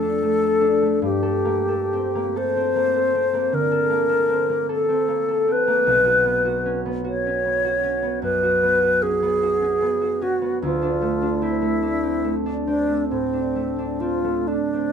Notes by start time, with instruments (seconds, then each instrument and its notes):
Already playing: harp F2 A3 A4, alto flute A4
0.02 harp D4
0.23 harp A3
0.42 harp A4
0.61 harp D4
0.82 harp A3
1.02 harp G2, alto flute G4
1.23 harp A4
1.45 harp A#3
1.68 harp A4
1.93 harp C4
2.15 harp A#3
2.36 harp A4, alto flute C5
2.56 harp C4
2.75 harp A#3
2.96 harp A4
3.15 harp C4
3.33 harp A#3
3.52 harp D3, alto flute A#4
3.72 harp A4
3.90 harp A#3
4.09 harp A4
4.28 harp C4
4.49 harp A#3
4.69 harp A4, alto flute A4
4.89 harp C4
5.08 harp A#3
5.28 harp A4
5.48 harp C4
5.52 alto flute B4
5.67 harp A#3
5.87 harp B1
6.05 harp F#4
6.25 harp B3
6.45 harp F#4
6.66 harp C#4
6.86 harp B3
7.04 harp F#4, alto flute C#5
7.27 harp C#4
7.45 harp B3
7.65 harp F#4
7.84 harp C#4
8.03 harp B3
8.22 harp F#2, alto flute B4
8.43 harp F#4
8.63 harp B3
8.82 harp F#4
9.02 harp C#4, alto flute G#4
9.22 harp B3
9.43 harp F#4
9.62 harp C#4
9.82 harp B3
10.01 harp F#4
10.21 harp C#4, alto flute F#4
10.42 harp B3
10.62 harp D2, alto flute F4
10.82 harp D4
11.02 harp A3
11.22 harp D4
11.42 harp C4, alto flute E4
11.62 harp A3
11.82 harp D4
12.03 harp C4
12.24 harp A3
12.46 harp D4
12.66 harp C4, alto flute D4
12.88 harp A3
13.09 harp A2, alto flute C4
13.33 harp D4
13.56 harp A3
13.79 harp D4
14.00 harp C4, alto flute F4
14.24 harp A3
14.48 alto flute D4, harp D4
14.73 harp C4